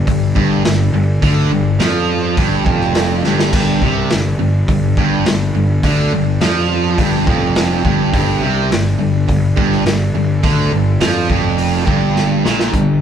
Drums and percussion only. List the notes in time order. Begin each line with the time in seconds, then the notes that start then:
0.07 kick, open hi-hat
0.36 kick
0.65 snare, open hi-hat
1.22 kick, open hi-hat
1.79 snare, open hi-hat
2.37 kick, open hi-hat
2.66 kick
2.81 snare
2.95 snare, open hi-hat
3.24 snare
3.39 snare
3.53 kick, open hi-hat, crash
3.82 kick
4.10 snare, open hi-hat
4.68 kick, open hi-hat
4.97 kick
5.26 snare, open hi-hat
5.83 kick, open hi-hat
6.41 snare, open hi-hat
6.98 kick, open hi-hat
7.27 kick
7.56 snare, open hi-hat
7.85 kick
8.14 kick, open hi-hat
8.71 snare, open hi-hat
9.29 kick, open hi-hat
9.57 kick
9.72 snare
9.86 snare, open hi-hat
10.43 kick, open hi-hat
11.01 snare, open hi-hat
11.30 kick
11.58 open hi-hat
11.87 kick
12.16 snare
12.46 snare
12.59 snare
12.74 kick, closed hi-hat